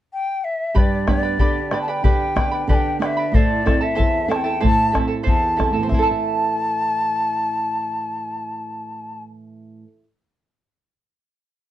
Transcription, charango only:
0.75 G4 B4 D5 G5 B5
1.07 B4 D5 G5 B5
1.23 B4 D5 B5
1.39 G4 B4 D5 G5 B5
1.72 B4 D5 G5 B5
1.88 B4 D5 B5
2.04 G4 B4 D5 G5 B5
2.36 B4 D5 G5 B5
2.52 B4 D5 B5
2.69 G4 B4 D5 G5 B5
3.02 B4 D5 G5 B5
3.17 B4 D5 B5
3.34 E4 A4 C5 E5 A5
3.66 E4 A4 E5 A5
3.81 E4 A4 A5
3.95 E4 A4 C5 E5 A5
4.28 E4 A4 E5 A5
4.44 E4 A4 A5
4.60 E4 A4 C5 E5 A5
4.92 E4 A4 E5 A5
5.08 E4 A4 A5
5.23 E4 A4 C5 E5 A5
5.57 E4 A4 E5 A5
5.73 E4 A4 A5
5.83 C5
5.89 E5
5.94 E4
5.99 A4 A5

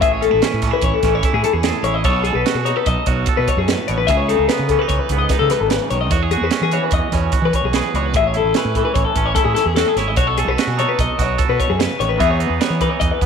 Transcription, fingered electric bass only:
0.02 A1
0.33 A1
0.54 A2
0.83 A1
1.03 A1
1.33 A2
1.53 E2
1.83 A1
2.05 B1
2.35 B1
2.55 B2
2.87 B1
3.07 B1
3.38 B2
3.57 F#2
3.89 A1
4.09 C#2
4.39 C#2
4.59 C#3
4.90 C#2
5.10 C#2
5.41 C#3
5.61 G#1
5.91 B1
6.11 E2
6.41 E2
6.61 E3
6.92 E2
7.12 E2
7.42 E3
7.63 B1
7.94 C#2
8.14 A1
8.44 A1
8.65 A2
8.95 A1
9.16 A1
9.45 A2
9.66 E2
9.96 G#1
10.17 B1
10.47 B1
10.67 B2
10.99 B1
11.19 B1
11.49 B2
11.70 F#2
12.00 A1
12.20 E2
12.50 E2
12.70 E3
13.02 E2
13.21 E2

